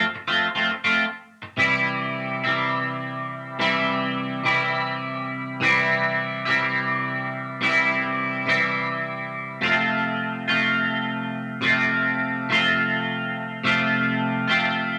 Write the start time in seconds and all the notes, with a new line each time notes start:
0.15 muted clean electric guitar stroke
0.28 F3 A3 C4 F4
0.55 F3 A3 C4 F4
0.72 muted clean electric guitar stroke
0.84 F3 A3 C4 F4
1.42 muted clean electric guitar stroke
1.57 C3 E3 G3 C4 E4
2.44 C3 E3 G3 C4 E4
3.59 C3 E3 G3 C4 E4
4.44 C3 E3 G3 C4 E4
5.60 C3 E3 G3 C4 E4
6.45 C3 E3 G3 C4 E4
7.61 C3 E3 G3 C4 E4
8.46 C3 E3 G3 C4 E4
9.61 C3 F3 A3 C4 F4
10.48 C3 F3 A3 C4 F4
11.61 C3 F3 A3 C4 F4
12.49 C3 F3 A3 C4 F4
13.64 C3 F3 A3 C4 F4
14.48 C3 F3 A3 C4 F4